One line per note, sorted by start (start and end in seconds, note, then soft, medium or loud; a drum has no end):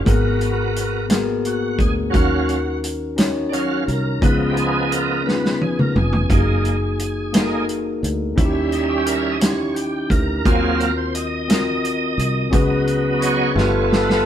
0.05 1.76 G#1 medium
0.05 1.06 G#2 medium
0.05 0.12 A#3 medium
0.05 1.06 B3 soft
0.05 0.76 F#4 medium
0.05 1.06 F#4 soft
0.05 0.76 G#4 medium
0.05 1.06 A#4 soft
0.05 0.76 A#4 medium
0.05 kick medium
0.05 closed hi-hat medium
0.11 0.78 B3 medium
0.41 closed hi-hat soft
0.76 closed hi-hat medium
1.09 1.16 A#3 medium
1.09 1.80 F#4 medium
1.09 1.80 G#4 medium
1.09 1.81 A#4 medium
1.09 snare medium
1.09 closed hi-hat medium
1.16 1.83 B3 medium
1.45 1.81 F#4 medium
1.45 closed hi-hat soft
1.79 2.11 D2 medium
1.79 1.94 G#4 medium
1.79 kick medium
1.79 closed hi-hat soft
2.10 3.14 D#3 medium
2.10 2.58 F#3 soft
2.10 2.59 C#4 soft
2.10 2.83 C#4 medium
2.10 2.84 D#4 medium
2.10 2.79 F#4 medium
2.10 2.59 F5 medium
2.10 kick loud
2.10 closed hi-hat medium
2.14 3.84 D#2 medium
2.14 2.84 F#4 medium
2.14 2.85 A#4 medium
2.49 closed hi-hat soft
2.84 closed hi-hat medium
3.16 3.87 C#4 medium
3.16 3.88 D#4 medium
3.16 3.88 F#4 medium
3.16 3.88 C#5 medium
3.16 snare medium
3.16 closed hi-hat medium
3.49 3.84 F#3 soft
3.49 3.84 C#4 soft
3.49 3.53 D4 medium
3.49 3.61 D#4 medium
3.49 closed hi-hat soft
3.54 3.85 F5 soft
3.70 3.78 F#4 medium
3.87 4.20 C2 medium
3.87 4.23 A#4 medium
3.87 closed hi-hat soft
4.21 5.91 C#2 medium
4.21 5.22 C#3 soft
4.21 5.22 F3 soft
4.21 4.91 B3 medium
4.21 5.22 B3 soft
4.21 4.92 C#4 medium
4.21 5.22 D#4 medium
4.21 4.29 D#4 soft
4.21 4.93 G#4 medium
4.21 4.35 B4 medium
4.21 kick loud
4.21 closed hi-hat medium
4.29 4.96 F4 medium
4.50 4.57 G4 medium
4.57 4.93 G#4 medium
4.57 closed hi-hat soft
4.91 5.27 A#4 medium
4.91 closed hi-hat medium
5.24 5.95 B3 medium
5.24 5.95 C#4 medium
5.24 5.33 D#4 soft
5.24 5.62 B4 medium
5.24 5.96 B4 medium
5.24 snare soft
5.33 5.99 F4 medium
5.45 snare medium
5.61 5.79 G#4 medium
5.61 high tom medium
5.79 5.97 A#4 medium
5.79 mid tom medium
5.96 6.27 F1 medium
5.96 7.66 G#4 medium
5.96 mid tom medium
6.13 floor tom medium
6.29 7.99 F#1 loud
6.29 6.76 G#3 soft
6.29 6.99 A#3 medium
6.29 6.76 A#3 soft
6.29 7.00 D#4 medium
6.29 6.77 D#4 medium
6.29 7.00 F#4 medium
6.29 6.37 G4 medium
6.29 kick loud
6.29 closed hi-hat medium
6.38 7.04 G#4 medium
6.65 closed hi-hat soft
6.99 closed hi-hat medium
7.33 7.65 G#3 soft
7.33 8.03 A#3 medium
7.33 7.65 A#3 soft
7.33 8.03 D#4 medium
7.33 7.66 D#4 medium
7.33 8.04 F#4 medium
7.33 7.41 A4 medium
7.33 snare medium
7.33 closed hi-hat medium
7.42 8.08 A#4 medium
7.69 closed hi-hat soft
8.03 8.35 D2 medium
8.03 closed hi-hat soft
8.36 10.06 D#2 medium
8.36 9.37 D#3 medium
8.36 9.37 G3 soft
8.36 9.06 C#4 medium
8.36 9.38 C#4 soft
8.36 9.07 D#4 medium
8.36 9.07 E4 medium
8.36 8.45 F#4 medium
8.36 9.38 E5 soft
8.36 kick medium
8.36 closed hi-hat medium
8.45 9.11 G4 loud
8.72 8.90 D#4 medium
8.72 closed hi-hat soft
8.89 9.07 G4 medium
9.06 9.32 A#4 medium
9.06 closed hi-hat medium
9.32 9.40 D#5 medium
9.40 10.10 C#4 medium
9.40 10.11 D#4 medium
9.40 10.11 E4 medium
9.40 10.11 G4 medium
9.40 9.76 C#5 medium
9.40 snare medium
9.40 closed hi-hat medium
9.74 10.11 G4 medium
9.74 closed hi-hat soft
10.10 10.42 D2 medium
10.10 10.37 A#4 medium
10.10 kick medium
10.10 closed hi-hat soft
10.38 10.45 A#4 medium
10.45 12.14 D#2 loud
10.45 11.46 D#3 medium
10.45 10.91 F#3 soft
10.45 10.91 A#3 soft
10.45 11.15 C4 medium
10.45 10.91 C4 soft
10.45 11.15 F4 medium
10.45 11.16 F#4 medium
10.45 10.77 G#4 medium
10.45 11.16 A#4 medium
10.45 10.92 F5 soft
10.45 kick loud
10.45 closed hi-hat medium
10.78 10.98 A#4 medium
10.78 10.81 C5 medium
10.78 closed hi-hat soft
10.97 11.15 C5 medium
11.14 12.83 D#5 loud
11.14 closed hi-hat medium
11.48 12.18 C4 medium
11.48 12.18 F4 medium
11.48 12.19 F#4 medium
11.48 12.19 A#4 medium
11.48 snare medium
11.48 closed hi-hat medium
11.85 closed hi-hat soft
12.18 12.49 C2 medium
12.18 closed hi-hat soft
12.51 13.52 C#2 medium
12.51 13.52 C#3 medium
12.51 13.52 F#3 medium
12.51 13.52 B3 soft
12.51 13.21 C#4 medium
12.51 13.52 D#4 medium
12.51 13.21 F#4 medium
12.51 13.22 G#4 medium
12.51 13.22 B4 loud
12.51 kick medium
12.51 closed hi-hat medium
12.87 closed hi-hat soft
13.21 13.92 C#5 loud
13.21 closed hi-hat medium
13.55 14.21 G1 loud
13.55 14.26 G2 medium
13.55 14.26 A3 soft
13.55 14.26 A3 medium
13.55 14.26 B3 medium
13.55 14.25 D4 medium
13.55 14.26 D4 medium
13.55 14.25 F4 medium
13.55 14.26 F4 medium
13.55 14.26 G4 medium
13.55 14.26 A4 loud
13.55 14.26 B4 medium
13.55 snare medium
13.90 14.22 B4 medium
13.90 snare medium
14.10 snare medium